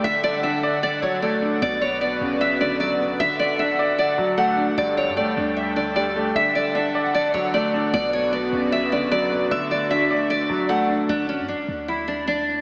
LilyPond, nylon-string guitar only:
\new Staff \with { instrumentName = "Nylon-string guitar" } { \time 4/4 \key d \major \tempo 4 = 152 e''8 d''8 e''4 d''8 cis''8 d''4 | d''8 cis''8 d''4 e''8 d''8 d''4 | e''8 d''8 e''4 d''4 fis''8 r8 | d''8 cis''8 d''4 e''8 d''8 d''4 |
e''8 d''8 e''4 d''8 cis''8 d''4 | d''8 cis''8 d''4 e''8 d''8 d''4 | e''8 d''8 e''4 d''4 fis''8 r8 | d'8 cis'8 d'4 e'8 d'8 d'4 | }